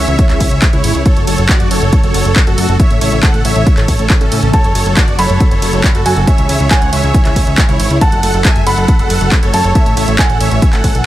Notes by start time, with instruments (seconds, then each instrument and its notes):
Already playing: analog synth pad C#3 E3 G#3 E4 G#4, supersaw synth C#5 E5
0.08 analog synth bass C#2, closed hi-hat
0.19 kick, closed hi-hat
0.30 analog synth bass C#2, supersaw synth C#5 E5, clap, closed hi-hat
0.40 analog synth bass C#2, kick, open hi-hat, ride
0.51 analog synth bass C#2, closed hi-hat
0.62 kick, clap, closed hi-hat
0.73 analog synth bass C#2, supersaw synth E4 C#5, closed hi-hat
0.84 analog synth bass G#1, open hi-hat, ride
0.95 analog synth bass C#2, closed hi-hat
1.06 analog synth pad C#3 F#3 A3 F#4 A4, supersaw synth A4 C#5, kick, closed hi-hat
1.17 analog synth bass F#1, closed hi-hat
1.27 analog synth bass F#1, supersaw synth A4 C#5, open hi-hat, ride
1.38 analog synth bass F#1, closed hi-hat
1.49 supersaw synth F#4 D5, kick, clap, closed hi-hat
1.60 analog synth bass F#1, closed hi-hat
1.71 analog synth bass F#1, supersaw synth A4 C#5, open hi-hat, ride
1.82 analog synth bass F#1, closed hi-hat
1.93 kick, closed hi-hat
2.03 analog synth bass F#1, supersaw synth A4 C#5, closed hi-hat
2.14 analog synth bass F#1, open hi-hat, ride
2.25 analog synth bass F#1, closed hi-hat
2.36 kick, clap, closed hi-hat
2.47 analog synth bass F#1, supersaw synth F#4 A4, closed hi-hat
2.58 analog synth bass F#2, open hi-hat, ride
2.69 analog synth bass F#1, closed hi-hat
2.80 analog synth pad E3 E4, supersaw synth C#5 E5, kick, closed hi-hat
2.90 analog synth bass A1, closed hi-hat
3.01 analog synth bass A1, supersaw synth C#5 E5, open hi-hat, ride
3.12 analog synth bass A1, closed hi-hat
3.23 supersaw synth A4 F#5, kick, clap, closed hi-hat
3.34 analog synth bass A1, closed hi-hat
3.45 analog synth bass A1, supersaw synth C#5 E5, open hi-hat, ride
3.56 analog synth bass A1, closed hi-hat
3.67 kick, closed hi-hat
3.77 analog synth bass A1, supersaw synth A4 C#5, clap, closed hi-hat
3.88 analog synth bass A1, kick, open hi-hat, ride
3.99 analog synth bass A1, closed hi-hat
4.10 kick, clap, closed hi-hat
4.21 analog synth bass A1, supersaw synth C#4 A4, closed hi-hat
4.32 analog synth bass A2, open hi-hat, ride
4.43 analog synth bass A1, closed hi-hat
4.53 analog synth pad F#3 F#4, supersaw synth A4 C#5, felt piano A5, kick, closed hi-hat
4.64 analog synth bass F#1, closed hi-hat
4.75 analog synth bass F#1, supersaw synth A4 C#5, open hi-hat, ride
4.86 analog synth bass F#1, closed hi-hat
4.97 supersaw synth F#4 D5, kick, clap, closed hi-hat
5.08 analog synth bass F#1, closed hi-hat
5.19 analog synth bass F#1, supersaw synth A4 C#5, felt piano B5, open hi-hat, ride
5.30 analog synth bass F#1, closed hi-hat
5.40 kick, closed hi-hat
5.51 analog synth bass F#1, supersaw synth A4 C#5, closed hi-hat
5.62 analog synth bass F#1, open hi-hat, ride
5.73 analog synth bass F#1, closed hi-hat
5.84 kick, clap, closed hi-hat
5.95 analog synth bass F#1, supersaw synth F#4 A4, closed hi-hat
6.06 analog synth bass F#2, felt piano G#5, open hi-hat, ride
6.17 analog synth bass F#1, closed hi-hat
6.27 analog synth pad E3 G#3 E4 G#4, supersaw synth C#5 E5, kick, closed hi-hat
6.38 analog synth bass C#2, closed hi-hat
6.49 analog synth bass C#2, supersaw synth C#5 E5, open hi-hat, ride
6.60 analog synth bass C#2, closed hi-hat
6.71 supersaw synth C#5 F#5, felt piano G#5, kick, clap, closed hi-hat
6.82 analog synth bass C#2, closed hi-hat
6.93 analog synth bass C#2, supersaw synth C#5 E5, open hi-hat, ride
7.04 analog synth bass C#2, closed hi-hat
7.14 kick, closed hi-hat
7.25 analog synth bass C#2, supersaw synth C#5 E5, clap, closed hi-hat
7.36 analog synth bass C#2, kick, open hi-hat, ride
7.47 analog synth bass C#2, closed hi-hat
7.58 kick, clap, closed hi-hat
7.69 analog synth bass C#2, supersaw synth E4 C#5, closed hi-hat
7.80 analog synth bass G#1, open hi-hat, ride
7.90 analog synth bass C#2, closed hi-hat
8.01 analog synth pad F#3 A3 F#4 A4, supersaw synth A4 F#5, felt piano A5, kick, closed hi-hat
8.12 analog synth bass F#1, closed hi-hat
8.23 analog synth bass F#1, supersaw synth A4 F#5, open hi-hat, ride
8.34 analog synth bass F#1, closed hi-hat
8.45 supersaw synth E5 G#5, kick, clap, closed hi-hat
8.56 analog synth bass F#1, closed hi-hat
8.67 analog synth bass F#1, supersaw synth A4 F#5, felt piano B5, open hi-hat, ride
8.77 analog synth bass F#1, closed hi-hat
8.88 kick, closed hi-hat
8.99 analog synth bass F#1, supersaw synth A4 F#5, closed hi-hat
9.10 analog synth bass F#1, open hi-hat, ride
9.21 analog synth bass F#1, closed hi-hat
9.32 kick, clap, closed hi-hat
9.43 analog synth bass F#1, supersaw synth A4 C#5, closed hi-hat
9.54 analog synth bass F#2, felt piano A5, open hi-hat, ride
9.64 analog synth bass F#1, closed hi-hat
9.75 analog synth pad E3 E4, supersaw synth C#5 E5, kick, closed hi-hat
9.86 analog synth bass A1, closed hi-hat
9.97 analog synth bass A1, supersaw synth C#5 E5, open hi-hat, ride
10.08 analog synth bass A1, closed hi-hat
10.19 supersaw synth A4 F#5, felt piano G#5, kick, clap, closed hi-hat
10.30 analog synth bass A1, closed hi-hat
10.40 analog synth bass A1, supersaw synth C#5 E5, open hi-hat, ride
10.51 analog synth bass A1, closed hi-hat
10.62 kick, closed hi-hat
10.73 analog synth bass A1, supersaw synth A4 F#5, clap, closed hi-hat
10.84 analog synth bass A1, kick, open hi-hat, ride
10.95 analog synth bass B1, closed hi-hat